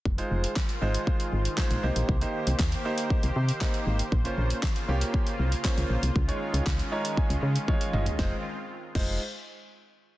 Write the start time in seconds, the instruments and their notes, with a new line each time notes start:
0.05 fm bass F1, supersaw synth D#3 G#3 F4 C5, kick
0.18 grand piano G#3 D#4 F4 C5, closed hi-hat
0.31 fm bass F1
0.44 closed hi-hat
0.56 kick, snare, clap
0.69 closed hi-hat
0.81 fm bass G#1, grand piano G#3 D#4 F4 C5
0.94 closed hi-hat
1.07 kick
1.20 closed hi-hat
1.33 fm bass G#1
1.45 closed hi-hat
1.57 grand piano G#3 D#4 F4 C5, kick, snare, clap
1.71 fm bass A#1, closed hi-hat
1.83 fm bass C2, grand piano A#3 D#4 G4 C5, supersaw synth A#3 G4
1.96 fm bass A#1, closed hi-hat
2.09 fm bass C2, kick
2.21 grand piano A#3 D#4 G4 C5, closed hi-hat
2.47 fm bass C2, closed hi-hat
2.59 fm bass D#2, kick, snare, clap
2.72 closed hi-hat
2.85 grand piano A#3 D#4 G4 C5
2.98 closed hi-hat
3.10 kick
3.23 fm bass C2, closed hi-hat
3.36 fm bass C3
3.49 closed hi-hat
3.61 grand piano A#3 D#4 G4 C5, kick, snare, clap
3.74 closed hi-hat
3.87 fm bass G#1
3.99 closed hi-hat
4.12 fm bass A#1, supersaw synth C#3 A#3 F4, kick
4.25 grand piano A#3 C#4 F4 C5, closed hi-hat
4.38 fm bass A#1
4.50 closed hi-hat
4.63 kick, snare, clap
4.76 closed hi-hat
4.88 fm bass C2, grand piano A#3 C#4 F4 G4
5.01 closed hi-hat
5.14 kick
5.27 closed hi-hat
5.39 fm bass C2
5.52 closed hi-hat
5.64 grand piano A#3 C#4 F4 C5, kick, snare, clap
5.78 fm bass C#2, closed hi-hat
5.90 fm bass A#1
6.03 fm bass C2, closed hi-hat
6.15 fm bass C#2, supersaw synth D#3 G#3 C#4, kick
6.28 grand piano G#3 D#4 F4 C#5, closed hi-hat
6.54 fm bass C#2, closed hi-hat
6.66 fm bass C#2, kick, snare, clap
6.79 closed hi-hat
6.92 grand piano G#3 D#4 F4 C#5 A#5
7.05 closed hi-hat
7.17 grand piano G#5, kick
7.30 fm bass C#2, closed hi-hat
7.43 fm bass C#3
7.56 closed hi-hat
7.68 grand piano G#3 D#4 F4 C#5 F5, kick, high tom
7.81 closed hi-hat
7.93 fm bass G1, grand piano D#5, mid tom
8.06 closed hi-hat, floor tom
8.19 fm bass F1, supersaw synth D#3 G#3 C4 F4, grand piano G#3 D#4 F4 C5, kick, snare
8.95 fm bass F1, grand piano G#3 D#4 F4 C5, kick, crash